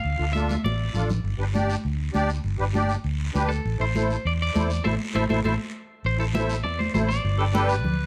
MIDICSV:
0, 0, Header, 1, 6, 480
1, 0, Start_track
1, 0, Key_signature, 0, "minor"
1, 0, Tempo, 299850
1, 66, Time_signature, 4, 2, 24, 8
1, 12906, End_track
2, 0, Start_track
2, 0, Title_t, "Clean electric guitar"
2, 0, Program_c, 0, 27
2, 0, Note_on_c, 0, 77, 85
2, 488, Note_off_c, 0, 77, 0
2, 528, Note_on_c, 0, 76, 92
2, 1026, Note_off_c, 0, 76, 0
2, 1032, Note_on_c, 0, 74, 75
2, 1700, Note_off_c, 0, 74, 0
2, 5580, Note_on_c, 0, 69, 77
2, 6033, Note_off_c, 0, 69, 0
2, 6101, Note_on_c, 0, 72, 87
2, 6829, Note_off_c, 0, 72, 0
2, 6834, Note_on_c, 0, 74, 92
2, 6914, Note_off_c, 0, 74, 0
2, 7079, Note_on_c, 0, 74, 97
2, 7728, Note_off_c, 0, 74, 0
2, 7749, Note_on_c, 0, 69, 91
2, 7755, Note_on_c, 0, 72, 83
2, 7762, Note_on_c, 0, 76, 89
2, 7906, Note_off_c, 0, 72, 0
2, 7907, Note_off_c, 0, 69, 0
2, 7912, Note_off_c, 0, 76, 0
2, 8250, Note_on_c, 0, 69, 91
2, 8253, Note_on_c, 0, 72, 88
2, 8256, Note_on_c, 0, 76, 97
2, 8397, Note_off_c, 0, 72, 0
2, 8399, Note_off_c, 0, 69, 0
2, 8401, Note_off_c, 0, 76, 0
2, 8475, Note_on_c, 0, 69, 85
2, 8483, Note_on_c, 0, 72, 74
2, 8489, Note_on_c, 0, 76, 87
2, 8630, Note_off_c, 0, 69, 0
2, 8630, Note_off_c, 0, 72, 0
2, 8637, Note_off_c, 0, 76, 0
2, 8720, Note_on_c, 0, 69, 88
2, 8729, Note_on_c, 0, 72, 89
2, 8731, Note_on_c, 0, 76, 76
2, 8872, Note_off_c, 0, 69, 0
2, 8875, Note_off_c, 0, 76, 0
2, 8877, Note_off_c, 0, 72, 0
2, 9702, Note_on_c, 0, 72, 93
2, 9912, Note_off_c, 0, 72, 0
2, 9921, Note_on_c, 0, 69, 91
2, 10001, Note_off_c, 0, 69, 0
2, 10161, Note_on_c, 0, 76, 97
2, 10603, Note_off_c, 0, 76, 0
2, 10622, Note_on_c, 0, 74, 90
2, 10868, Note_on_c, 0, 72, 83
2, 10874, Note_off_c, 0, 74, 0
2, 11092, Note_off_c, 0, 72, 0
2, 11111, Note_on_c, 0, 72, 92
2, 11191, Note_off_c, 0, 72, 0
2, 11342, Note_on_c, 0, 74, 84
2, 12720, Note_off_c, 0, 74, 0
2, 12906, End_track
3, 0, Start_track
3, 0, Title_t, "Tenor saxophone"
3, 0, Program_c, 1, 66
3, 11812, Note_on_c, 1, 69, 93
3, 11924, Note_off_c, 1, 69, 0
3, 12078, Note_on_c, 1, 69, 107
3, 12306, Note_on_c, 1, 71, 101
3, 12330, Note_off_c, 1, 69, 0
3, 12906, Note_off_c, 1, 71, 0
3, 12906, End_track
4, 0, Start_track
4, 0, Title_t, "Accordion"
4, 0, Program_c, 2, 21
4, 299, Note_on_c, 2, 62, 67
4, 301, Note_on_c, 2, 65, 57
4, 314, Note_on_c, 2, 69, 73
4, 387, Note_off_c, 2, 62, 0
4, 387, Note_off_c, 2, 65, 0
4, 394, Note_off_c, 2, 69, 0
4, 543, Note_on_c, 2, 62, 68
4, 548, Note_on_c, 2, 65, 66
4, 559, Note_on_c, 2, 69, 81
4, 881, Note_off_c, 2, 62, 0
4, 883, Note_off_c, 2, 65, 0
4, 889, Note_off_c, 2, 69, 0
4, 1505, Note_on_c, 2, 65, 65
4, 1507, Note_on_c, 2, 62, 76
4, 1518, Note_on_c, 2, 69, 76
4, 1758, Note_off_c, 2, 65, 0
4, 1759, Note_off_c, 2, 62, 0
4, 1765, Note_off_c, 2, 69, 0
4, 2228, Note_on_c, 2, 67, 76
4, 2231, Note_on_c, 2, 62, 84
4, 2236, Note_on_c, 2, 71, 84
4, 2313, Note_off_c, 2, 67, 0
4, 2314, Note_off_c, 2, 62, 0
4, 2316, Note_off_c, 2, 71, 0
4, 2462, Note_on_c, 2, 62, 82
4, 2469, Note_on_c, 2, 67, 73
4, 2472, Note_on_c, 2, 74, 91
4, 2802, Note_off_c, 2, 62, 0
4, 2805, Note_off_c, 2, 67, 0
4, 2807, Note_off_c, 2, 74, 0
4, 3417, Note_on_c, 2, 67, 80
4, 3418, Note_on_c, 2, 62, 84
4, 3432, Note_on_c, 2, 74, 107
4, 3676, Note_off_c, 2, 62, 0
4, 3676, Note_off_c, 2, 67, 0
4, 3683, Note_off_c, 2, 74, 0
4, 4143, Note_on_c, 2, 62, 83
4, 4151, Note_on_c, 2, 67, 78
4, 4160, Note_on_c, 2, 71, 97
4, 4231, Note_off_c, 2, 62, 0
4, 4235, Note_off_c, 2, 67, 0
4, 4240, Note_off_c, 2, 71, 0
4, 4386, Note_on_c, 2, 62, 91
4, 4393, Note_on_c, 2, 67, 74
4, 4401, Note_on_c, 2, 74, 92
4, 4725, Note_off_c, 2, 62, 0
4, 4729, Note_off_c, 2, 67, 0
4, 4733, Note_off_c, 2, 74, 0
4, 5347, Note_on_c, 2, 62, 88
4, 5356, Note_on_c, 2, 67, 88
4, 5363, Note_on_c, 2, 71, 102
4, 5602, Note_off_c, 2, 62, 0
4, 5606, Note_off_c, 2, 67, 0
4, 5610, Note_off_c, 2, 71, 0
4, 6068, Note_on_c, 2, 64, 66
4, 6072, Note_on_c, 2, 69, 60
4, 6078, Note_on_c, 2, 72, 76
4, 6155, Note_off_c, 2, 64, 0
4, 6157, Note_off_c, 2, 69, 0
4, 6160, Note_off_c, 2, 72, 0
4, 6322, Note_on_c, 2, 64, 64
4, 6331, Note_on_c, 2, 69, 58
4, 6339, Note_on_c, 2, 72, 77
4, 6654, Note_off_c, 2, 64, 0
4, 6659, Note_off_c, 2, 69, 0
4, 6662, Note_off_c, 2, 72, 0
4, 7277, Note_on_c, 2, 64, 75
4, 7279, Note_on_c, 2, 69, 68
4, 7287, Note_on_c, 2, 72, 82
4, 7528, Note_off_c, 2, 64, 0
4, 7529, Note_off_c, 2, 69, 0
4, 7533, Note_off_c, 2, 72, 0
4, 7765, Note_on_c, 2, 72, 85
4, 7767, Note_on_c, 2, 69, 82
4, 7768, Note_on_c, 2, 64, 83
4, 7915, Note_off_c, 2, 72, 0
4, 7916, Note_off_c, 2, 64, 0
4, 7916, Note_off_c, 2, 69, 0
4, 8236, Note_on_c, 2, 64, 81
4, 8238, Note_on_c, 2, 69, 91
4, 8239, Note_on_c, 2, 72, 99
4, 8389, Note_off_c, 2, 64, 0
4, 8390, Note_off_c, 2, 69, 0
4, 8390, Note_off_c, 2, 72, 0
4, 8485, Note_on_c, 2, 69, 83
4, 8490, Note_on_c, 2, 64, 89
4, 8490, Note_on_c, 2, 72, 82
4, 8634, Note_off_c, 2, 69, 0
4, 8637, Note_off_c, 2, 64, 0
4, 8637, Note_off_c, 2, 72, 0
4, 8715, Note_on_c, 2, 64, 93
4, 8718, Note_on_c, 2, 69, 88
4, 8721, Note_on_c, 2, 72, 93
4, 8868, Note_off_c, 2, 64, 0
4, 8870, Note_off_c, 2, 69, 0
4, 8872, Note_off_c, 2, 72, 0
4, 9892, Note_on_c, 2, 64, 68
4, 9904, Note_on_c, 2, 69, 68
4, 9913, Note_on_c, 2, 72, 80
4, 9987, Note_off_c, 2, 64, 0
4, 9993, Note_off_c, 2, 69, 0
4, 9997, Note_off_c, 2, 72, 0
4, 10145, Note_on_c, 2, 64, 72
4, 10154, Note_on_c, 2, 69, 65
4, 10165, Note_on_c, 2, 72, 79
4, 10484, Note_off_c, 2, 64, 0
4, 10489, Note_off_c, 2, 69, 0
4, 10494, Note_off_c, 2, 72, 0
4, 11108, Note_on_c, 2, 64, 79
4, 11112, Note_on_c, 2, 69, 76
4, 11117, Note_on_c, 2, 72, 82
4, 11361, Note_off_c, 2, 64, 0
4, 11363, Note_off_c, 2, 69, 0
4, 11366, Note_off_c, 2, 72, 0
4, 11804, Note_on_c, 2, 62, 70
4, 11816, Note_on_c, 2, 71, 88
4, 11820, Note_on_c, 2, 67, 69
4, 11901, Note_off_c, 2, 62, 0
4, 11907, Note_off_c, 2, 71, 0
4, 11909, Note_off_c, 2, 67, 0
4, 12054, Note_on_c, 2, 62, 86
4, 12066, Note_on_c, 2, 67, 88
4, 12070, Note_on_c, 2, 71, 104
4, 12397, Note_off_c, 2, 62, 0
4, 12403, Note_off_c, 2, 67, 0
4, 12405, Note_off_c, 2, 71, 0
4, 12906, End_track
5, 0, Start_track
5, 0, Title_t, "Fingered electric bass"
5, 0, Program_c, 3, 33
5, 75, Note_on_c, 3, 38, 91
5, 263, Note_off_c, 3, 38, 0
5, 311, Note_on_c, 3, 38, 84
5, 886, Note_off_c, 3, 38, 0
5, 1031, Note_on_c, 3, 33, 86
5, 1414, Note_off_c, 3, 33, 0
5, 1508, Note_on_c, 3, 33, 84
5, 1892, Note_off_c, 3, 33, 0
5, 1980, Note_on_c, 3, 31, 93
5, 2175, Note_off_c, 3, 31, 0
5, 2216, Note_on_c, 3, 31, 83
5, 2798, Note_off_c, 3, 31, 0
5, 2959, Note_on_c, 3, 38, 84
5, 3340, Note_off_c, 3, 38, 0
5, 3442, Note_on_c, 3, 38, 87
5, 3822, Note_off_c, 3, 38, 0
5, 3909, Note_on_c, 3, 31, 89
5, 4102, Note_off_c, 3, 31, 0
5, 4157, Note_on_c, 3, 31, 88
5, 4731, Note_off_c, 3, 31, 0
5, 4875, Note_on_c, 3, 38, 83
5, 5258, Note_off_c, 3, 38, 0
5, 5366, Note_on_c, 3, 38, 85
5, 5745, Note_off_c, 3, 38, 0
5, 5848, Note_on_c, 3, 33, 91
5, 6034, Note_off_c, 3, 33, 0
5, 6082, Note_on_c, 3, 33, 91
5, 6655, Note_off_c, 3, 33, 0
5, 6807, Note_on_c, 3, 40, 91
5, 7186, Note_off_c, 3, 40, 0
5, 7295, Note_on_c, 3, 40, 99
5, 7671, Note_off_c, 3, 40, 0
5, 7766, Note_on_c, 3, 33, 99
5, 7939, Note_off_c, 3, 33, 0
5, 8240, Note_on_c, 3, 33, 94
5, 8416, Note_off_c, 3, 33, 0
5, 8488, Note_on_c, 3, 33, 88
5, 8660, Note_off_c, 3, 33, 0
5, 8727, Note_on_c, 3, 33, 99
5, 8899, Note_off_c, 3, 33, 0
5, 9681, Note_on_c, 3, 33, 101
5, 10633, Note_off_c, 3, 33, 0
5, 10633, Note_on_c, 3, 40, 101
5, 11016, Note_off_c, 3, 40, 0
5, 11116, Note_on_c, 3, 33, 95
5, 11497, Note_off_c, 3, 33, 0
5, 11595, Note_on_c, 3, 31, 105
5, 12545, Note_off_c, 3, 31, 0
5, 12545, Note_on_c, 3, 38, 102
5, 12906, Note_off_c, 3, 38, 0
5, 12906, End_track
6, 0, Start_track
6, 0, Title_t, "Drums"
6, 58, Note_on_c, 9, 74, 60
6, 218, Note_off_c, 9, 74, 0
6, 549, Note_on_c, 9, 73, 64
6, 564, Note_on_c, 9, 63, 61
6, 709, Note_off_c, 9, 73, 0
6, 724, Note_off_c, 9, 63, 0
6, 790, Note_on_c, 9, 73, 62
6, 810, Note_on_c, 9, 63, 69
6, 950, Note_off_c, 9, 73, 0
6, 970, Note_off_c, 9, 63, 0
6, 1033, Note_on_c, 9, 74, 62
6, 1053, Note_on_c, 9, 63, 63
6, 1193, Note_off_c, 9, 74, 0
6, 1214, Note_off_c, 9, 63, 0
6, 1505, Note_on_c, 9, 73, 69
6, 1535, Note_on_c, 9, 64, 66
6, 1665, Note_off_c, 9, 73, 0
6, 1695, Note_off_c, 9, 64, 0
6, 1753, Note_on_c, 9, 73, 68
6, 1771, Note_on_c, 9, 64, 71
6, 1913, Note_off_c, 9, 73, 0
6, 1931, Note_off_c, 9, 64, 0
6, 1995, Note_on_c, 9, 74, 59
6, 2155, Note_off_c, 9, 74, 0
6, 2474, Note_on_c, 9, 73, 60
6, 2485, Note_on_c, 9, 63, 76
6, 2634, Note_off_c, 9, 73, 0
6, 2645, Note_off_c, 9, 63, 0
6, 2717, Note_on_c, 9, 73, 73
6, 2877, Note_off_c, 9, 73, 0
6, 2939, Note_on_c, 9, 74, 67
6, 3099, Note_off_c, 9, 74, 0
6, 3423, Note_on_c, 9, 73, 71
6, 3434, Note_on_c, 9, 63, 71
6, 3583, Note_off_c, 9, 73, 0
6, 3594, Note_off_c, 9, 63, 0
6, 3669, Note_on_c, 9, 73, 64
6, 3829, Note_off_c, 9, 73, 0
6, 3903, Note_on_c, 9, 74, 66
6, 4063, Note_off_c, 9, 74, 0
6, 4393, Note_on_c, 9, 73, 63
6, 4403, Note_on_c, 9, 63, 70
6, 4553, Note_off_c, 9, 73, 0
6, 4563, Note_off_c, 9, 63, 0
6, 4629, Note_on_c, 9, 73, 74
6, 4789, Note_off_c, 9, 73, 0
6, 4869, Note_on_c, 9, 74, 71
6, 5029, Note_off_c, 9, 74, 0
6, 5359, Note_on_c, 9, 73, 69
6, 5369, Note_on_c, 9, 63, 73
6, 5519, Note_off_c, 9, 73, 0
6, 5529, Note_off_c, 9, 63, 0
6, 5609, Note_on_c, 9, 73, 73
6, 5769, Note_off_c, 9, 73, 0
6, 5851, Note_on_c, 9, 74, 66
6, 6011, Note_off_c, 9, 74, 0
6, 6327, Note_on_c, 9, 63, 73
6, 6334, Note_on_c, 9, 73, 64
6, 6487, Note_off_c, 9, 63, 0
6, 6494, Note_off_c, 9, 73, 0
6, 6570, Note_on_c, 9, 73, 69
6, 6731, Note_off_c, 9, 73, 0
6, 6828, Note_on_c, 9, 74, 66
6, 6988, Note_off_c, 9, 74, 0
6, 7280, Note_on_c, 9, 73, 70
6, 7293, Note_on_c, 9, 63, 85
6, 7440, Note_off_c, 9, 73, 0
6, 7453, Note_off_c, 9, 63, 0
6, 7525, Note_on_c, 9, 73, 76
6, 7685, Note_off_c, 9, 73, 0
6, 7760, Note_on_c, 9, 74, 100
6, 7776, Note_on_c, 9, 63, 95
6, 7920, Note_off_c, 9, 74, 0
6, 7936, Note_off_c, 9, 63, 0
6, 8234, Note_on_c, 9, 74, 87
6, 8251, Note_on_c, 9, 63, 82
6, 8394, Note_off_c, 9, 74, 0
6, 8411, Note_off_c, 9, 63, 0
6, 8484, Note_on_c, 9, 74, 100
6, 8486, Note_on_c, 9, 63, 87
6, 8644, Note_off_c, 9, 74, 0
6, 8646, Note_off_c, 9, 63, 0
6, 8717, Note_on_c, 9, 74, 99
6, 8726, Note_on_c, 9, 63, 83
6, 8877, Note_off_c, 9, 74, 0
6, 8886, Note_off_c, 9, 63, 0
6, 9676, Note_on_c, 9, 74, 69
6, 9836, Note_off_c, 9, 74, 0
6, 9927, Note_on_c, 9, 63, 32
6, 10087, Note_off_c, 9, 63, 0
6, 10158, Note_on_c, 9, 73, 64
6, 10162, Note_on_c, 9, 63, 96
6, 10318, Note_off_c, 9, 73, 0
6, 10322, Note_off_c, 9, 63, 0
6, 10397, Note_on_c, 9, 73, 78
6, 10557, Note_off_c, 9, 73, 0
6, 10634, Note_on_c, 9, 74, 72
6, 10644, Note_on_c, 9, 63, 35
6, 10794, Note_off_c, 9, 74, 0
6, 10804, Note_off_c, 9, 63, 0
6, 10890, Note_on_c, 9, 63, 60
6, 11050, Note_off_c, 9, 63, 0
6, 11118, Note_on_c, 9, 73, 74
6, 11127, Note_on_c, 9, 63, 87
6, 11278, Note_off_c, 9, 73, 0
6, 11287, Note_off_c, 9, 63, 0
6, 11374, Note_on_c, 9, 73, 72
6, 11534, Note_off_c, 9, 73, 0
6, 11605, Note_on_c, 9, 74, 71
6, 11765, Note_off_c, 9, 74, 0
6, 11845, Note_on_c, 9, 63, 34
6, 12005, Note_off_c, 9, 63, 0
6, 12070, Note_on_c, 9, 73, 73
6, 12083, Note_on_c, 9, 63, 92
6, 12230, Note_off_c, 9, 73, 0
6, 12243, Note_off_c, 9, 63, 0
6, 12313, Note_on_c, 9, 73, 73
6, 12473, Note_off_c, 9, 73, 0
6, 12550, Note_on_c, 9, 74, 67
6, 12561, Note_on_c, 9, 63, 34
6, 12561, Note_on_c, 9, 64, 72
6, 12710, Note_off_c, 9, 74, 0
6, 12721, Note_off_c, 9, 63, 0
6, 12721, Note_off_c, 9, 64, 0
6, 12906, End_track
0, 0, End_of_file